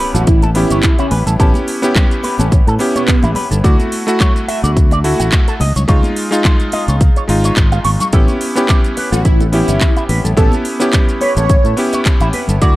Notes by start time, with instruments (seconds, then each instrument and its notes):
Already playing: electric grand piano B3 C#4 E4 G4, impact
0.00 clean electric guitar B4, cabasa
0.14 fingered electric bass A1, analog synth lead F#4, clean electric guitar A4, closed hi-hat, high conga, cabasa, shaker
0.27 analog synth lead E4, kick, closed hi-hat, cabasa, shaker
0.42 clean electric guitar A4, closed hi-hat, muted conga, shaker
0.55 electric grand piano B3 C#4 E4 G4, analog synth lead E4, open hi-hat, cabasa
0.70 fingered electric bass G1, clean electric guitar C#5, closed hi-hat, high conga, cabasa, shaker
0.83 kick, clap, closed hi-hat, cabasa, shaker
0.99 analog synth lead C#4, clean electric guitar E4, closed hi-hat, shaker
1.11 fingered electric bass A1, clean electric guitar B4, open hi-hat, high conga, cabasa
1.26 fingered electric bass A1, clean electric guitar A4, closed hi-hat, low conga, cabasa, shaker
1.39 fingered electric bass A1, electric grand piano B3 C#4 E4 G4, clean electric guitar A4, kick, closed hi-hat, cabasa, shaker
1.54 closed hi-hat, high conga, shaker
1.67 open hi-hat, cabasa
1.82 electric grand piano B3 C#4 E4 G4, closed hi-hat, cabasa, shaker
1.95 clean electric guitar G4, kick, clap, closed hi-hat, high conga, low conga, cabasa, shaker
2.11 closed hi-hat, shaker
2.23 clean electric guitar B4, open hi-hat, muted conga, cabasa
2.38 fingered electric bass A1, analog synth lead C#4, clean electric guitar A4, closed hi-hat, high conga, cabasa, shaker
2.51 kick, closed hi-hat, cabasa, shaker
2.67 fingered electric bass A2, clean electric guitar A4, closed hi-hat, shaker
2.79 electric grand piano B3 C#4 E4 G4, open hi-hat, cabasa
2.95 analog synth lead B3, clean electric guitar C#5, closed hi-hat, high conga, cabasa, shaker
3.07 kick, clap, closed hi-hat, cabasa, shaker
3.23 fingered electric bass A1, clean electric guitar E4, closed hi-hat, muted conga, shaker
3.35 clean electric guitar B4, open hi-hat, high conga, cabasa
3.51 fingered electric bass G1, clean electric guitar A4, closed hi-hat, low conga, cabasa, shaker
3.64 fingered electric bass D2, electric grand piano A3 E4 F#4, clean electric guitar D5, kick, closed hi-hat, cabasa, shaker
3.80 closed hi-hat, high conga, shaker
3.92 open hi-hat, cabasa
4.07 electric grand piano A3 E4 F#4, closed hi-hat, cabasa, shaker
4.20 clean electric guitar C#5, kick, clap, closed hi-hat, high conga, low conga, cabasa, shaker
4.36 closed hi-hat, shaker
4.48 clean electric guitar E5, open hi-hat, muted conga, cabasa
4.64 fingered electric bass D2, clean electric guitar D5, closed hi-hat, high conga, cabasa, shaker
4.77 kick, closed hi-hat, cabasa, shaker
4.91 clean electric guitar D5, closed hi-hat, muted conga, shaker
5.04 electric grand piano A3 E4 F#4, open hi-hat, cabasa
5.20 fingered electric bass A1, clean electric guitar F#5, closed hi-hat, high conga, cabasa, shaker
5.32 kick, clap, closed hi-hat, cabasa, shaker
5.48 clean electric guitar A4, closed hi-hat, shaker
5.60 fingered electric bass C#2, clean electric guitar D#5, open hi-hat, high conga, cabasa
5.75 fingered electric bass C#2, clean electric guitar C#5, closed hi-hat, low conga, cabasa, shaker
5.88 fingered electric bass C#2, electric grand piano G#3 D#4 F4, clean electric guitar C#5, kick, closed hi-hat, cabasa, shaker
6.03 closed hi-hat, high conga, shaker
6.16 open hi-hat, cabasa
6.31 electric grand piano G#3 D#4 F4, closed hi-hat, cabasa, shaker
6.45 clean electric guitar C5, kick, clap, closed hi-hat, high conga, low conga, cabasa, shaker
6.60 closed hi-hat, shaker
6.72 clean electric guitar D#5, open hi-hat, muted conga, cabasa
6.88 fingered electric bass C#2, clean electric guitar C#5, closed hi-hat, high conga, cabasa, shaker
7.01 kick, closed hi-hat, cabasa, shaker
7.16 clean electric guitar C#5, closed hi-hat, shaker
7.28 fingered electric bass G#1, electric grand piano G#3 D#4 F4, open hi-hat, cabasa
7.44 clean electric guitar C#5, closed hi-hat, high conga, cabasa, shaker
7.56 fingered electric bass G#1, kick, clap, closed hi-hat, cabasa, shaker
7.72 clean electric guitar F5, closed hi-hat, muted conga, shaker
7.85 fingered electric bass G#1, clean electric guitar C#6, open hi-hat, high conga, cabasa
8.00 clean electric guitar C#6, closed hi-hat, low conga, cabasa, shaker
8.13 fingered electric bass A1, electric grand piano B3 C#4 E4 G4, clean electric guitar A4, kick, closed hi-hat, cabasa, shaker
8.28 closed hi-hat, high conga, shaker
8.41 open hi-hat, cabasa
8.55 electric grand piano B3 C#4 E4 G4, closed hi-hat, cabasa, shaker
8.68 clean electric guitar G4, kick, clap, closed hi-hat, high conga, low conga, cabasa, shaker
8.84 closed hi-hat, shaker
8.97 clean electric guitar B4, open hi-hat, muted conga, cabasa
9.12 fingered electric bass A1, analog synth lead F#4, clean electric guitar A4, closed hi-hat, high conga, cabasa, shaker
9.25 analog synth lead E4, kick, closed hi-hat, cabasa, shaker
9.40 clean electric guitar A4, closed hi-hat, muted conga, shaker
9.52 electric grand piano B3 C#4 E4 G4, analog synth lead E4, open hi-hat, cabasa
9.68 fingered electric bass G1, clean electric guitar C#5, closed hi-hat, high conga, cabasa, shaker
9.81 kick, clap, closed hi-hat, cabasa, shaker
9.96 clean electric guitar E4, closed hi-hat, shaker
10.09 fingered electric bass A1, clean electric guitar B4, open hi-hat, high conga, cabasa
10.24 fingered electric bass A1, clean electric guitar A4, closed hi-hat, low conga, cabasa, shaker
10.37 fingered electric bass A1, electric grand piano B3 C#4 E4 G4, clean electric guitar A4, analog synth lead A4, kick, closed hi-hat, cabasa, shaker
10.52 closed hi-hat, high conga, shaker
10.65 open hi-hat, cabasa
10.80 electric grand piano B3 C#4 E4 G4, closed hi-hat, cabasa, shaker
10.93 clean electric guitar G4, kick, clap, closed hi-hat, high conga, low conga, cabasa, shaker
11.09 closed hi-hat, shaker
11.21 clean electric guitar B4, analog synth lead C#5, open hi-hat, muted conga, cabasa
11.37 fingered electric bass A1, clean electric guitar A4, analog synth lead C#5, closed hi-hat, high conga, cabasa, shaker
11.49 kick, closed hi-hat, cabasa, shaker
11.64 fingered electric bass A2, clean electric guitar A4, closed hi-hat, shaker
11.77 electric grand piano B3 C#4 E4 G4, open hi-hat, cabasa
11.93 clean electric guitar C#5, closed hi-hat, high conga, cabasa, shaker
12.05 kick, clap, closed hi-hat, cabasa, shaker
12.20 fingered electric bass A1, clean electric guitar E4, closed hi-hat, muted conga, shaker
12.33 clean electric guitar B4, open hi-hat, high conga, cabasa
12.48 fingered electric bass G1, clean electric guitar A4, closed hi-hat, low conga, cabasa, shaker
12.61 fingered electric bass D2, electric grand piano A3 E4 F#4, clean electric guitar D5, kick, closed hi-hat, cabasa, shaker